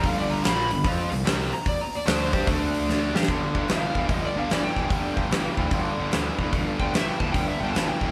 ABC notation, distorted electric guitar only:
X:1
M:4/4
L:1/8
Q:"Swing" 1/4=148
K:Ddor
V:1 name="Distorted electric guitar" clef=bass
[G,,D,G,]2 [_B,,F,_B,] [G,,D,] [F,CF] [C,G,] [C,G,C] z | z2 [D,A,D] [G,DG] [D,A,D]3 [G,DG] | [G,,D,] [G,,D,] [G,,E,] [G,,E,] [G,,D,] [G,,D,] [G,,E,] [G,,E,] | [G,,D,] [G,,D,] [G,,E,] [G,,E,] [G,,D,] [G,,D,] [G,,E,] [G,,E,] |
[G,,D,] [G,,D,] [G,,E,] [G,,E,] [G,,D,] [G,,D,] [G,,E,] [G,,E,] |]